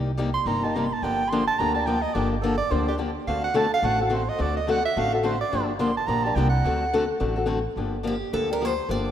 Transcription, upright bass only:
0.00 0.35 C2 medium
0.45 0.91 G1 medium
1.02 1.48 G1 medium
1.59 2.04 D2 medium
2.15 2.60 G1 medium
2.71 3.16 D2 medium
3.27 3.72 D2 medium
3.83 4.28 A1 medium
4.40 4.85 D2 medium
4.97 5.41 A1 medium
5.53 5.97 G1 medium
6.08 6.32 A#1 medium
6.36 6.60 C2 loud
7.21 7.66 A1 medium
7.76 8.21 G1 medium
8.33 8.78 D2 medium
8.89 9.11 G1 medium

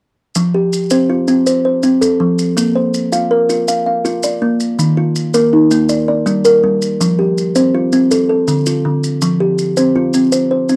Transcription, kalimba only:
0.36 0.73 F3 medium
0.54 1.10 G4 medium
0.91 1.27 C4 medium
0.91 1.45 C5 medium
1.10 1.65 F4 medium
1.28 1.65 C4 medium
1.47 1.64 C5 medium
1.65 2.20 C5 medium
1.83 2.20 C4 medium
2.01 2.57 A4 medium
2.20 2.57 F3 medium
2.57 2.94 A#3 medium
2.75 3.31 C5 medium
3.12 3.48 F4 medium
3.12 3.67 F5 medium
3.31 3.86 A#4 medium
3.49 3.86 F4 medium
3.68 3.85 F5 medium
3.86 4.42 F5 medium
4.05 4.42 F4 medium
4.24 4.79 D5 medium
4.42 4.79 A#3 medium
4.79 5.15 D#3 medium
4.97 5.52 F4 medium
5.34 5.70 A#3 medium
5.34 5.89 A#4 medium
5.53 6.08 D#4 medium
5.71 5.89 A#3 medium
5.89 6.07 D5 medium
6.08 6.63 D5 medium
6.26 6.62 G3 medium
6.45 7.00 A#4 medium
6.64 7.00 G3 medium
7.00 7.37 F3 medium
7.19 7.74 G4 medium
7.56 7.92 C4 medium
7.56 8.11 C5 medium
7.75 8.30 F4 medium
7.93 8.11 C4 medium
8.11 8.28 A4 medium
8.29 8.85 A4 medium
8.48 8.84 D3 medium
8.67 9.22 F4 medium
8.85 9.22 D3 medium
9.22 9.59 F3 medium
9.40 9.96 G4 medium
9.77 10.13 C4 medium
9.77 10.31 C5 medium
9.96 10.51 F4 medium
10.14 10.51 C4 medium
10.32 10.50 C5 medium
10.51 10.76 C5 medium
10.69 10.76 C4 medium

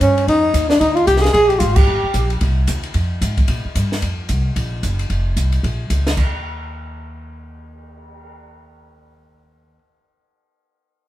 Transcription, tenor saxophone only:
0.02 0.26 C#4 medium
0.29 0.68 D#4 medium
0.69 0.79 D4 medium
0.80 0.97 D#4 loud
0.96 1.07 F4 medium
1.07 1.21 G4 loud
1.21 1.32 G#4 medium
1.33 1.50 G#4 loud
1.48 1.61 G4 medium
1.59 1.77 F4 medium
1.75 2.30 G4 medium

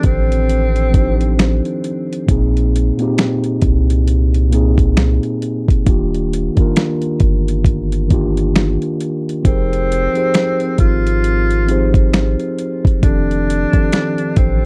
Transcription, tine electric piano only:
0.00 2.30 D#3 medium
0.00 0.92 F3 medium
0.00 0.93 C4 medium
0.00 0.94 D4 medium
0.00 0.96 G4 medium
0.00 2.30 A4 medium
0.92 2.19 F3 medium
0.92 2.20 C4 medium
0.92 2.20 D4 medium
0.92 2.21 D#4 medium
0.92 2.21 G4 medium
0.97 2.22 C5 medium
2.26 2.93 A#2 medium
2.26 2.93 A#3 medium
2.26 2.94 C4 medium
2.26 2.95 D#4 medium
2.31 2.95 G#4 medium
2.98 4.42 A#2 medium
2.98 4.43 A#3 medium
2.98 4.43 C4 medium
2.98 4.44 D#4 medium
3.02 4.44 G4 medium
4.50 5.78 A#2 medium
4.50 5.78 A#3 medium
4.50 5.79 C4 medium
4.50 5.79 D#4 medium
4.55 5.80 G#4 medium
5.85 6.51 D#3 medium
5.85 6.52 A#3 medium
5.85 6.52 D4 medium
5.85 6.53 F4 medium
5.90 6.54 G4 medium
6.56 8.00 D#3 medium
6.56 8.01 A#3 medium
6.56 8.01 D4 medium
6.56 8.02 F4 medium
6.61 8.03 A#4 medium
8.08 9.36 D#3 medium
8.08 9.36 A#3 medium
8.08 9.37 D4 medium
8.08 9.38 F4 medium
8.13 9.38 G4 medium
9.43 10.09 F3 medium
9.43 10.10 C4 medium
9.43 10.10 D#4 medium
9.43 10.11 G4 medium
9.47 10.11 G#4 medium
9.47 10.12 A#4 medium
10.13 11.58 F3 medium
10.13 11.59 C4 medium
10.13 11.59 D#4 medium
10.13 11.60 G4 medium
10.13 11.60 G#4 medium
10.18 11.61 C5 medium
11.66 12.94 F3 medium
11.66 12.94 C4 medium
11.66 12.95 D#4 medium
11.66 12.95 G4 medium
11.70 12.96 G#4 medium
11.70 12.96 C5 medium
13.01 13.69 D#3 medium
13.01 13.67 F3 medium
13.01 13.68 C4 medium
13.01 13.68 D4 medium
13.01 13.69 G4 medium
13.06 13.70 A4 medium
13.72 14.65 D#3 medium
13.72 14.65 F3 medium
13.72 14.65 C4 medium
13.72 14.65 D4 medium
13.72 14.65 G4 medium
13.77 14.65 A4 medium

